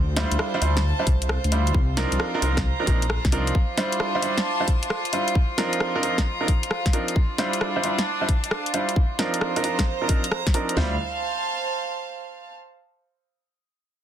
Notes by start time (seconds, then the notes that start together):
Already playing: D2 C5
0.06 F4
0.17 G3 D4 E4 F4 C5, snare, open hi-hat
0.32 D2 A5, closed hi-hat
0.39 cross-stick
0.54 G3 D4 E4 F4 C5
0.62 D2 G3 D4 E4 F4 C5, open hi-hat
0.77 snare, closed hi-hat
0.99 G3 D4 E4 F4 C5
1.07 C2, kick, open hi-hat
1.22 closed hi-hat
1.29 cross-stick
1.44 D2, closed hi-hat
1.52 G3 D4 E4 F4 C5, open hi-hat
1.67 closed hi-hat
1.74 C2, kick
1.97 F3 C4 D4 D#4 A#4, snare, open hi-hat
2.12 C2, closed hi-hat
2.20 cross-stick
2.31 F3 C4 D4 D#4 A#4 A#5
2.42 C2 F3 C4 D4 D#4 A#4, open hi-hat
2.57 kick, cross-stick, snare, closed hi-hat
2.80 F3 C4 D4 D#4 A#4
2.87 A#1 F3 C4 D4 D#4 A#4, kick, open hi-hat
3.02 closed hi-hat
3.10 cross-stick
3.25 C2, kick, snare, closed hi-hat
3.32 F3 C4 D4 D#4 A#4, open hi-hat
3.47 closed hi-hat
3.55 D4, kick
3.77 G3 D4 E4 F4 C5, snare, open hi-hat
3.92 closed hi-hat
4.00 cross-stick
4.05 A5
4.15 G3 D4 E4 F4 C5
4.22 G3 D4 E4 F4 C5, open hi-hat
4.38 snare, closed hi-hat
4.60 G3 D4 E4 F4 C5
4.68 kick, open hi-hat
4.83 closed hi-hat
4.90 cross-stick
5.05 closed hi-hat
5.13 G3 D4 E4 F4 C5, open hi-hat
5.28 closed hi-hat
5.35 kick
5.58 F3 C4 D4 D#4 A#4, snare, open hi-hat
5.73 closed hi-hat
5.80 cross-stick
5.95 F3 C4 D4 D#4 A#4 A#5
6.03 F3 C4 D4 D#4 A#4, open hi-hat
6.18 kick, cross-stick, snare, closed hi-hat
6.41 F3 C4 D4 D#4 A#4
6.48 kick, open hi-hat
6.63 closed hi-hat
6.71 cross-stick
6.86 kick, snare, closed hi-hat
6.93 F3 C4 D4 D#4 A#4, open hi-hat
7.08 closed hi-hat
7.16 D4, kick
7.38 G3 D4 E4 F4 C5, snare, open hi-hat
7.53 closed hi-hat
7.61 cross-stick
7.76 G3 D4 E4 F4 C5 A5
7.84 G3 D4 E4 F4 C5, open hi-hat
7.99 snare, closed hi-hat
8.21 G3 D4 E4 F4 C5
8.29 kick, open hi-hat
8.44 closed hi-hat
8.51 cross-stick
8.66 closed hi-hat
8.74 G3 D4 E4 F4 C5, open hi-hat
8.89 closed hi-hat
8.96 C5, kick
9.19 F3 C4 D4 D#4 A#4, snare, open hi-hat
9.34 closed hi-hat
9.41 cross-stick
9.56 F3 C4 D4 D#4 A#4 A#5, open hi-hat
9.64 F3 C4 D4 D#4 A#4, open hi-hat
9.79 kick, cross-stick, snare, closed hi-hat
10.02 F3 C4 D4 D#4 A#4
10.09 F3 C4 D4 D#4 A#4, kick, open hi-hat
10.24 closed hi-hat
10.32 cross-stick
10.47 kick, snare, closed hi-hat
10.54 F3 C4 D4 D#4 A#4, open hi-hat
10.69 closed hi-hat
10.77 D2 G3 D4 E4 F4 C5, snare, floor tom
10.86 F5
10.93 A5